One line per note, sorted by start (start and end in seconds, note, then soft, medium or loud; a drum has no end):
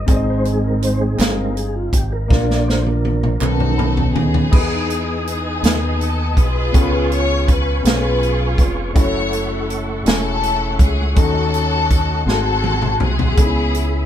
0.00 0.10 A#3 medium
0.00 0.10 G4 medium
0.00 0.10 D#5 medium
0.00 0.25 D#5 medium
0.06 1.15 G#1 loud
0.06 1.15 G#2 medium
0.06 1.18 G#3 medium
0.06 0.86 C4 medium
0.06 0.86 D#4 medium
0.06 0.87 G#4 medium
0.06 0.87 C5 medium
0.06 0.16 D5 medium
0.06 kick loud
0.06 closed hi-hat medium
0.11 1.18 C4 soft
0.11 1.18 D#4 medium
0.16 0.91 D#5 medium
0.30 0.47 C5 medium
0.45 0.65 G#4 medium
0.45 closed hi-hat soft
0.64 0.83 A#4 medium
0.82 1.02 C5 medium
0.82 closed hi-hat medium
1.01 1.39 G#4 medium
1.17 1.89 G1 medium
1.17 1.53 G#3 soft
1.17 1.97 C4 medium
1.17 1.53 C4 soft
1.17 1.97 D#4 medium
1.17 1.53 D#4 soft
1.17 1.98 G#4 medium
1.17 1.98 C5 medium
1.17 1.99 F5 medium
1.17 clap medium
1.17 closed hi-hat medium
1.21 snare loud
1.39 1.56 A#4 medium
1.57 1.76 G#4 medium
1.57 closed hi-hat soft
1.76 1.95 F4 medium
1.93 2.27 G#1 medium
1.93 2.13 G4 medium
1.93 kick medium
1.93 closed hi-hat medium
2.13 2.51 A#4 medium
2.28 3.38 A#1 loud
2.28 3.37 A#2 medium
2.28 3.37 F3 medium
2.28 3.08 A#3 medium
2.28 3.38 A#3 medium
2.28 3.08 D4 medium
2.28 3.38 D4 medium
2.28 3.09 F4 medium
2.28 3.09 A#4 medium
2.28 3.10 D5 medium
2.28 kick loud
2.32 snare medium
2.51 2.69 D5 medium
2.51 snare soft
2.68 2.85 C5 medium
2.68 snare medium
2.86 3.94 A#4 medium
2.86 high tom medium
3.05 high tom medium
3.23 mid tom medium
3.39 4.12 B1 medium
3.39 4.48 B2 medium
3.39 4.48 D#3 medium
3.39 4.19 B3 medium
3.39 4.49 B3 soft
3.39 4.49 C#4 medium
3.39 4.19 D#4 medium
3.39 4.16 D#4 medium
3.39 4.20 F#4 medium
3.39 4.49 F#4 medium
3.39 4.20 A4 medium
3.39 4.12 A4 medium
3.39 4.21 B4 medium
3.39 clap medium
3.39 mid tom medium
3.60 mid tom medium
3.78 4.13 B5 medium
3.78 mid tom loud
3.97 floor tom medium
4.14 4.50 D#2 medium
4.14 5.23 B3 medium
4.14 5.23 D#4 medium
4.14 5.27 G#4 medium
4.14 4.49 G#5 medium
4.14 floor tom loud
4.34 floor tom medium
4.50 5.59 E2 loud
4.50 5.59 E3 medium
4.50 5.30 B3 medium
4.50 5.30 D#4 medium
4.50 4.59 G4 medium
4.50 8.91 B4 medium
4.50 5.32 B4 medium
4.50 6.72 D#5 medium
4.50 8.91 G#5 medium
4.50 6.72 D#6 medium
4.50 kick loud
4.50 crash loud
4.59 5.34 G#4 medium
4.90 closed hi-hat medium
5.27 6.34 B3 medium
5.27 6.34 D#4 medium
5.27 5.97 G#4 medium
5.27 closed hi-hat medium
5.62 6.37 D#2 medium
5.62 6.41 B3 medium
5.62 6.41 D#4 medium
5.62 6.43 B4 medium
5.62 6.42 G#5 medium
5.62 snare loud
5.62 closed hi-hat medium
6.01 6.37 A4 medium
6.01 closed hi-hat soft
6.37 6.71 B1 medium
6.37 7.45 F4 medium
6.37 7.45 G#4 medium
6.37 7.12 B4 loud
6.37 kick medium
6.37 closed hi-hat medium
6.72 7.81 C#2 loud
6.72 7.81 C#3 medium
6.72 7.51 B3 medium
6.72 7.52 C#4 medium
6.72 7.52 F4 medium
6.72 7.53 G#4 medium
6.72 6.82 A4 medium
6.72 12.24 C#6 medium
6.72 kick loud
6.72 closed hi-hat medium
6.76 8.94 F5 medium
6.83 7.57 B4 medium
7.12 7.46 C#5 loud
7.12 closed hi-hat medium
7.48 7.86 B4 loud
7.48 kick medium
7.48 closed hi-hat medium
7.83 8.55 B1 loud
7.83 8.62 B3 medium
7.83 8.63 C#4 medium
7.83 8.63 F4 medium
7.83 8.63 G#4 medium
7.83 7.92 C5 medium
7.83 closed hi-hat medium
7.87 8.93 F4 medium
7.87 8.93 G#4 medium
7.87 8.65 B4 loud
7.87 snare loud
7.93 8.67 C#5 medium
8.23 closed hi-hat soft
8.58 8.92 F1 medium
8.58 kick loud
8.58 closed hi-hat medium
8.93 10.02 F#1 loud
8.93 9.72 A3 medium
8.93 12.24 A3 medium
8.93 9.73 C#4 medium
8.93 9.73 E4 medium
8.93 9.74 F#4 medium
8.93 9.74 A4 medium
8.93 11.14 E5 medium
8.93 13.33 F#5 medium
8.93 kick loud
8.93 closed hi-hat medium
8.97 10.03 E4 medium
8.97 10.03 A4 medium
8.97 9.66 C#5 loud
9.33 closed hi-hat medium
9.70 closed hi-hat medium
10.04 10.76 E1 loud
10.04 10.11 G#3 medium
10.04 10.84 C#4 medium
10.04 10.84 E4 medium
10.04 10.85 F#4 medium
10.04 10.85 G#5 medium
10.04 closed hi-hat medium
10.08 10.86 A3 medium
10.08 11.14 C#4 medium
10.08 11.14 E4 medium
10.08 10.78 A4 loud
10.08 snare loud
10.43 closed hi-hat soft
10.79 11.13 C#2 loud
10.79 11.15 G#4 medium
10.79 kick loud
10.79 closed hi-hat medium
11.14 12.23 D#2 loud
11.14 12.23 D#3 medium
11.14 11.93 A3 medium
11.14 11.94 C#4 medium
11.14 11.94 D#4 medium
11.14 11.95 F#4 medium
11.14 11.95 A4 medium
11.14 12.27 D#5 medium
11.14 kick loud
11.14 closed hi-hat medium
11.19 12.24 C#4 medium
11.19 12.24 F#4 medium
11.19 12.27 A4 loud
11.54 closed hi-hat medium
11.90 kick medium
11.90 closed hi-hat medium
12.25 12.96 G#1 loud
12.25 13.33 G#2 medium
12.25 13.06 G#3 medium
12.25 13.04 A3 medium
12.25 13.05 C4 medium
12.25 13.34 C4 medium
12.25 13.05 D#4 medium
12.25 13.37 F#4 medium
12.25 13.34 F#4 medium
12.25 13.06 F#4 medium
12.25 12.97 A4 loud
12.25 13.36 G#5 medium
12.25 13.36 C6 medium
12.25 snare medium
12.64 high tom medium
12.82 mid tom medium
13.00 13.35 C2 medium
13.00 14.06 B3 medium
13.00 14.06 E4 medium
13.00 14.06 G#4 loud
13.00 mid tom loud
13.19 floor tom loud
13.35 14.06 C#2 loud
13.35 14.06 C#3 medium
13.35 14.06 G#3 medium
13.35 14.06 B3 medium
13.35 14.06 C#4 medium
13.35 13.44 D#4 medium
13.35 14.06 G#4 medium
13.35 14.06 E5 medium
13.35 kick loud
13.35 closed hi-hat medium
13.39 14.06 G#4 medium
13.39 14.06 B5 medium
13.45 14.06 E4 medium
13.74 closed hi-hat medium